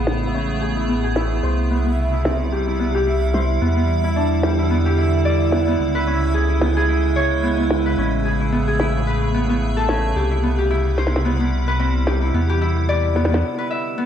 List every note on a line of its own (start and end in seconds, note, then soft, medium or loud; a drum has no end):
0.00 1.41 A1 medium
0.00 1.39 C#3 medium
0.00 1.41 A3 medium
0.00 0.88 B3 medium
0.00 1.39 B3 medium
0.00 0.34 C#4 medium
0.00 0.22 E4 medium
0.00 0.61 G#4 medium
0.00 1.41 G#4 medium
0.00 1.49 B4 medium
0.00 13.43 E5 medium
0.07 snare loud
0.22 0.76 E4 medium
0.34 1.49 C#4 medium
0.49 open hi-hat medium
0.61 1.04 G#4 medium
0.77 1.16 E4 medium
0.89 1.49 B3 medium
1.04 2.58 G#4 medium
1.16 2.13 E4 medium
1.16 snare loud
1.43 3.59 C2 medium
1.43 3.59 C3 medium
1.43 5.76 G3 medium
1.43 7.94 E4 medium
1.43 1.77 C5 medium
1.71 1.85 B3 medium
1.86 2.31 B3 medium
1.86 open hi-hat medium
2.13 2.67 E4 medium
2.25 2.86 C4 medium
2.25 snare loud
2.52 2.94 G4 medium
2.68 3.06 E4 medium
2.80 3.40 B3 medium
2.95 4.43 G4 medium
3.07 4.04 E4 medium
3.34 3.67 C5 medium
3.34 snare loud
3.34 open hi-hat medium
3.61 5.77 E2 medium
3.61 5.78 D3 medium
3.61 3.76 B3 medium
3.77 4.70 B3 medium
4.04 4.58 E4 medium
4.04 open hi-hat medium
4.16 6.13 D4 medium
4.43 4.85 G4 medium
4.43 snare loud
4.59 4.97 E4 medium
4.71 5.52 B3 medium
4.86 6.40 G4 medium
4.86 open hi-hat medium
4.98 6.49 E4 medium
5.25 6.13 D5 medium
5.52 5.67 B3 medium
5.52 snare loud
5.68 6.61 B3 medium
5.80 7.95 C#2 medium
5.80 10.12 C#3 medium
5.80 7.96 G#3 medium
5.95 7.85 B4 loud
6.07 7.97 C#4 medium
6.22 open hi-hat medium
6.34 6.76 G#4 medium
6.49 6.88 E4 medium
6.61 7.43 B3 medium
6.61 snare loud
6.77 8.25 G#4 medium
6.89 8.40 E4 medium
7.16 9.07 C#5 medium
7.43 7.58 B3 medium
7.59 8.52 B3 medium
7.71 snare loud
7.71 open hi-hat medium
7.86 9.06 B4 medium
7.98 10.14 A1 medium
7.98 10.14 A3 medium
7.98 9.88 C#4 medium
7.98 10.14 G#4 medium
8.25 8.67 G#4 medium
8.40 8.79 E4 medium
8.52 9.34 B3 medium
8.68 9.83 G#4 medium
8.80 10.31 E4 loud
8.80 snare loud
9.07 11.04 B4 medium
9.22 open hi-hat medium
9.34 9.49 B3 medium
9.49 10.43 B3 medium
9.77 11.96 A4 medium
9.89 11.04 C#4 medium
9.89 snare loud
10.16 12.32 C2 medium
10.16 12.32 C3 medium
10.16 13.40 G3 medium
10.16 12.32 E4 medium
10.16 10.58 G4 medium
10.31 10.70 E4 medium
10.43 11.04 B3 medium
10.59 12.07 G4 medium
10.71 12.22 E4 medium
10.71 open hi-hat medium
10.98 11.31 C5 medium
10.98 snare soft
11.07 snare medium
11.16 snare medium
11.25 11.40 B3 medium
11.40 11.86 B3 medium
11.68 11.86 B4 loud
11.80 12.40 C4 medium
12.07 12.49 G4 medium
12.07 snare loud
12.07 open hi-hat medium
12.22 12.61 E4 medium
12.34 13.43 E2 medium
12.34 13.42 D3 medium
12.34 13.16 B3 medium
12.34 13.42 E4 medium
12.50 14.06 G4 loud
12.62 14.06 E4 medium
12.77 open hi-hat medium
12.89 14.06 D5 loud
13.16 13.31 B3 medium
13.16 snare soft
13.25 snare medium
13.31 13.97 B3 medium
13.31 snare medium
13.58 14.06 B4 medium
13.71 14.06 E5 medium
13.98 14.06 B3 medium